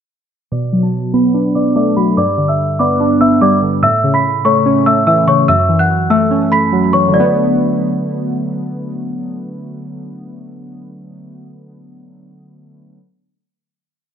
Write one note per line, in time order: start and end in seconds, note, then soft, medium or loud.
0.52 1.55 B2 medium
0.52 0.81 D5 medium
0.52 0.81 D6 loud
0.73 1.76 F#3 medium
0.83 1.12 A5 medium
0.83 1.12 A6 medium
1.14 1.54 B3 medium
1.14 1.53 B5 medium
1.14 1.53 B6 medium
1.34 2.17 D4 medium
1.55 2.17 B3 medium
1.55 1.72 D5 medium
1.55 1.72 D6 medium
1.76 2.17 A3 medium
1.76 1.93 D5 medium
1.76 1.92 D6 medium
1.97 2.17 F#3 medium
1.97 2.13 B5 medium
1.97 2.13 B6 medium
2.17 3.21 G2 medium
2.17 2.47 D5 medium
2.17 2.47 D6 loud
2.38 3.41 D3 medium
2.48 2.78 E5 medium
2.48 2.77 E6 medium
2.79 3.19 B3 medium
2.79 3.19 D5 medium
2.79 3.18 D6 medium
3.00 3.83 D4 medium
3.21 3.83 B3 medium
3.21 3.38 E5 medium
3.21 3.37 E6 medium
3.41 3.83 G3 medium
3.41 3.58 D5 medium
3.41 3.58 D6 medium
3.63 3.83 D3 medium
3.83 4.86 A2 medium
3.83 4.12 E5 medium
3.83 4.12 E6 medium
4.04 5.07 C#3 medium
4.14 4.43 B5 medium
4.14 4.43 B6 medium
4.45 4.85 A3 medium
4.45 4.84 C#5 medium
4.45 4.84 C#6 medium
4.66 5.48 C#4 medium
4.86 5.48 A3 medium
4.86 5.03 E5 medium
4.86 5.03 E6 medium
5.07 5.48 E3 medium
5.07 5.24 E5 medium
5.07 5.23 E6 medium
5.28 5.48 C#3 medium
5.28 5.44 C#5 medium
5.28 5.44 C#6 medium
5.48 6.52 F#2 medium
5.48 5.78 E5 medium
5.48 5.78 E6 medium
5.69 6.72 E3 medium
5.79 6.09 F#5 medium
5.79 6.09 F#6 medium
6.10 6.51 A3 loud
6.10 6.50 E5 medium
6.10 6.49 E6 medium
6.31 7.14 C#4 medium
6.52 7.14 A3 medium
6.52 6.91 B5 medium
6.52 6.91 B6 medium
6.73 7.11 F#3 medium
6.93 7.14 E3 medium
6.93 7.10 C#5 medium
6.93 7.09 C#6 medium
7.08 11.67 D3 medium
7.08 11.71 F#3 medium
7.14 11.75 A3 medium
7.14 8.34 D5 medium
7.20 11.79 B3 medium